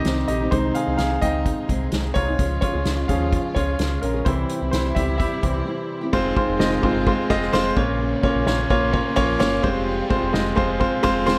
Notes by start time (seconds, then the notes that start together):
Already playing: C3 D#3 G3 C4 C#4 D#4 G4 A#4 C5 D#5
0.04 C2 G3 C4 D#4 G4, snare, closed hi-hat
0.28 A#1 G4 D#5, closed hi-hat
0.39 C4 D#4 G4
0.51 C2 C3 D#3 G#3 C4 D#4 G#4 C5, kick, closed hi-hat
0.75 G#4 F5, closed hi-hat
0.86 C2 C4 D#4 G#4
0.98 C2 G#4 F5, snare, closed hi-hat
1.21 C#2 G#3 C4 D#4 G#4 D#5 G5, kick, closed hi-hat
1.46 kick, closed hi-hat
1.68 C2 G#3 C4 D#4 G#4, kick, closed hi-hat
1.91 C2 G#3 C4 D#4 G#4, snare, closed hi-hat
2.14 C2 F4 C#5, kick, closed hi-hat
2.27 C4 D#4 G#4
2.38 C#2 C#3 F3 C#4 F4 G#4, kick, closed hi-hat
2.61 F4 C#5, kick, closed hi-hat
2.73 C#2 C#4 F4 G#4
2.85 C#2, snare, closed hi-hat
3.08 D#2 F3 G#3 C#4 F4 G#4 F5, kick, closed hi-hat
3.33 kick, closed hi-hat
3.55 C#2 F3 C#4 F4 G#4 C#5, kick, closed hi-hat
3.78 C#2 F3 C#4 F4 G#4, snare, closed hi-hat
4.02 A#1 C#4 A#4, closed hi-hat
4.13 C#4 F4 G#4
4.25 C2 C3 E3 G3 C4 E4 G4 C5, kick, closed hi-hat
4.49 closed hi-hat
4.60 C2 C4 E4 G4
4.71 C2 E4 C5, snare, closed hi-hat
4.95 C#2 G3 C4 E4 G4 E5, kick, closed hi-hat
5.18 G4 E5, kick, closed hi-hat
5.42 C2 E3 G3 C4 E4 G4, kick, closed hi-hat
5.65 G3 C4 E4 G4
6.01 C4 E4 G4
6.13 F1 C3 D#3 G#3 C4 D#4 F4 C5, kick, crash
6.36 G#3 C4 F4 C5, kick, ride
6.49 F1
6.59 F1 G#3 C4 F4 D#5, snare, ride
6.83 G1 G#3 C4 F4 C5, kick, ride
7.06 G#3 C4 F4 C5, kick, ride
7.30 F1 G#3 C4 F4 D#5, kick
7.42 snare
7.53 F1 G#3 C4 F4 C5, snare, ride
7.76 A#1 A#2 C#3 A#3 C#4 F4 C#5, kick
8.00 ride
8.23 A#3 C#4 F4 C#5, kick, ride
8.35 A#1
8.46 A#1 A#3 C#4 F4 C#5, snare, ride
8.70 A#1 A#3 C#4 F4 C#5, kick, ride
8.93 A#3 C#4 F4 C#5, kick, ride
9.16 A#1 F3 A#3 C#4 F4 C#5, kick, ride
9.39 G1 A#3 C#4 F4 C#5, snare, ride
9.63 F1 C3 F3 G3 G#3 C4 F4 G4 C5, kick, ride
9.87 ride
10.10 G#3 C4 F4 C5, kick, ride
10.23 F1
10.33 F1 G#3 C4 F4 D#5, snare, ride
10.56 F1 G#3 C4 F4 C5, kick, ride
10.80 G#3 C4 F4 C5, kick, ride
11.03 F1 F3 G#3 C4 F4 C5, kick, ride
11.26 D#1 G#3 C4 F4 C5, snare, ride